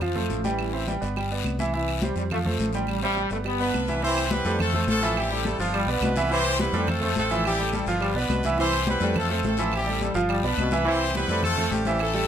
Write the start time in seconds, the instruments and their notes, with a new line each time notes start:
Already playing: fingered electric bass F2
0.01 grand piano F3 F4 F5, trombone section F3, high conga, low conga, long guiro, claves
0.15 grand piano A3 A4 C5, high conga, low conga
0.30 fingered electric bass A1, high conga, short guiro
0.44 trombone section E3, grand piano G3 G4 G5, high conga, short guiro
0.59 high conga, long guiro, claves
0.73 grand piano C4 C5 E5, high conga
0.87 trombone section E3, grand piano G3 G4 G5, high conga, short guiro
1.01 fingered electric bass G1, grand piano B3 B4 D5, high conga, short guiro
1.16 grand piano G3 G4 G5, high conga, long guiro, claves
1.31 grand piano B3 B4 D5, high conga
1.44 fingered electric bass C2, high conga, short guiro, claves
1.59 grand piano E3 E4 E5, high conga, short guiro
1.74 grand piano E3 E4 E5, trombone section E3, high conga, long guiro
1.88 high conga, claves
2.02 grand piano G3 G4 C5, trombone section G3, high conga, short guiro
2.16 fingered electric bass F2, trombone section G3, high conga, short guiro
2.30 grand piano F3 F4 F5, trombone section A3, high conga, low conga, long guiro, claves
2.45 trombone section F3, grand piano A3 A4 C5, high conga, low conga
2.59 fingered electric bass A1, high conga, short guiro
2.73 grand piano G3 G4 G5, high conga, short guiro
2.87 trombone section G3, high conga, long guiro, claves
3.02 trombone section G3, grand piano C4 C5 E5, high conga
3.15 grand piano G3 G4 G5, high conga, short guiro
3.30 fingered electric bass G1, trombone section A3, grand piano B3 B4 D5, high conga, short guiro
3.44 grand piano G3 G4 G5, trombone section B3, high conga, long guiro, claves
3.60 grand piano B3 B4 D5, horn section B3 D4 F4 B4, high conga
3.73 fingered electric bass C2, high conga, short guiro, claves
3.88 grand piano E3 E4 E5, high conga, short guiro
4.02 grand piano E3 E4 E5, trombone section E3, horn section C4 E4 G4 C5, high conga, long guiro
4.17 high conga, claves
4.30 grand piano G3 G4 C5, horn section B3 E4 G4 B4, high conga, short guiro
4.45 fingered electric bass F2, trombone section G3, grand piano A3 A4 C5, high conga, short guiro
4.59 horn section A3 C4 F4 A4, high conga, low conga, long guiro, claves
4.74 trombone section A3, grand piano A3 A4 C5, high conga, low conga
4.87 fingered electric bass A1, horn section A3 C4 F4 A4, high conga, short guiro
5.01 grand piano E3 E4 E5, trombone section F3, short guiro
5.16 horn section G3 C4 E4 G4, high conga, long guiro, claves
5.31 grand piano G3 G4 A4, high conga
5.45 trombone section G3, horn section A3 A4, high conga, short guiro
5.58 fingered electric bass G1, grand piano F3 F4 F5, horn section F3 B3 D4 F4, high conga, short guiro
5.73 trombone section G3, high conga, long guiro, claves
5.87 fingered electric bass B1, grand piano B3 B4 D5, horn section B3 D4 F4 B4, high conga
6.01 fingered electric bass C2, trombone section B2, high conga, short guiro, claves
6.16 grand piano E3 E4 E5, high conga, short guiro
6.30 grand piano E3 E4 E5, trombone section E3, horn section C4 E4 G4 C5, high conga, long guiro
6.45 high conga, claves
6.58 grand piano G3 G4 C5, horn section B3 E4 G4 B4, high conga, short guiro
6.72 fingered electric bass F2, trombone section G3, grand piano A3 A4 C5, high conga, short guiro
6.87 horn section A3 C4 F4 A4, high conga, low conga, long guiro, claves
7.01 trombone section A3, grand piano A3 A4 C5, high conga, low conga
7.15 fingered electric bass A1, horn section A3 C4 F4 A4, high conga, short guiro
7.30 grand piano E3 E4 E5, trombone section F3, short guiro
7.44 horn section G3 C4 E4 G4, high conga, long guiro, claves
7.59 grand piano G3 G4 A4, high conga
7.73 trombone section G3, horn section A3 A4, high conga, short guiro
7.86 fingered electric bass G1, grand piano F3 F4 F5, horn section F3 B3 D4 F4, high conga, short guiro
8.01 trombone section G3, high conga, long guiro, claves
8.14 fingered electric bass B1, grand piano B3 B4 D5, horn section B3 D4 F4 B4, high conga
8.29 fingered electric bass C2, trombone section B2, high conga, short guiro, claves
8.43 grand piano E3 E4 E5, high conga, short guiro
8.57 trombone section E3, grand piano E3 E4 E5, horn section C4 E4 G4 C5, high conga, long guiro
8.73 high conga, claves
8.86 grand piano G3 G4 C5, horn section B3 E4 G4 B4, high conga, short guiro
9.00 fingered electric bass F2, trombone section G3, grand piano A3 A4 C5, high conga, short guiro
9.14 horn section A3 F4 A4, high conga, low conga, long guiro, claves
9.19 horn section C4
9.29 trombone section A3, grand piano A3 A4 C5
9.43 fingered electric bass A1, horn section A3 F4 A4, high conga, short guiro
9.47 horn section C4
9.57 grand piano E3 E4 E5, trombone section F3, short guiro
9.72 horn section G3 C4 E4 G4, high conga, long guiro, claves
9.87 grand piano G3 G4 A4, high conga
10.01 trombone section G3, horn section A3 A4, high conga, short guiro
10.14 fingered electric bass G1, grand piano F3 F4 F5, high conga, short guiro
10.29 trombone section G3, high conga, long guiro, claves
10.42 fingered electric bass B1, grand piano B3 B4 D5, horn section B3 D4 F4 B4, high conga
10.57 fingered electric bass C2, trombone section B2, high conga, short guiro, claves
10.71 grand piano E3 E4 E5, high conga, short guiro
10.85 trombone section E3, grand piano E3 E4 E5, horn section C4 E4 G4 C5, high conga, long guiro
11.00 high conga, claves
11.14 grand piano G3 G4 C5, horn section B3 E4 G4 B4, high conga, short guiro
11.28 fingered electric bass F2, trombone section G3, grand piano A3 A4 C5, high conga, short guiro
11.43 horn section A3 C4 F4 A4, high conga, low conga, long guiro, claves
11.57 trombone section A3, grand piano A3 A4 C5, high conga, low conga
11.71 fingered electric bass A1, horn section G3 C4 G4, high conga, short guiro
11.85 grand piano E3 E4 E5, trombone section F3, high conga, short guiro
11.99 horn section A3 C4 E4 A4, high conga, long guiro, claves
12.14 grand piano G3 G4 A4, high conga